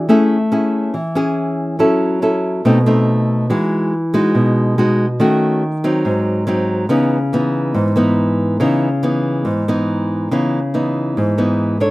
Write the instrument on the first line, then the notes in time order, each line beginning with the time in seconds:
nylon-string guitar
0.09 A3 C#4 E4 G#4
0.52 C#4 E4 G#4
0.94 E3
1.15 C#4 E4 G#4
1.79 F#3 C#4 E4 A4
2.22 C#4 E4 A4
2.65 B2 A3 C4 D#4
2.86 A3 C4 D#4
3.50 E3 G#3 D#4 F#4
4.14 G#3 D#4 F#4
4.35 B2
4.78 G#3 D#4 F#4
5.20 D#3 A3 C#4 F#4
5.84 F#3 C4 D#4
6.05 G#2
6.47 F#3 C4 D#4
6.89 C#3 E3 B3 D#4
7.33 E3 B3 D#4
7.74 G#2
7.96 E3 B3 D#4
8.60 C#3 E3 B3 D#4
9.03 E3 B3 D#4
9.45 G#2
9.68 E3 B3 D#4
10.31 C#3 E3 B3 D#4
10.74 E3 B3 D#4
11.17 G#2
11.38 E3 B3 D#4
11.80 D4 A4 C#5